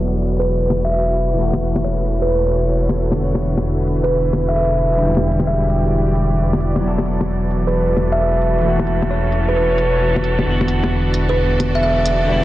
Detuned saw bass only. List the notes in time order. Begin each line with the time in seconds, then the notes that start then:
Already playing: E1
1.38 E1
3.19 E1
5.02 E1
6.84 E1
8.65 E1
10.46 E1
12.28 E1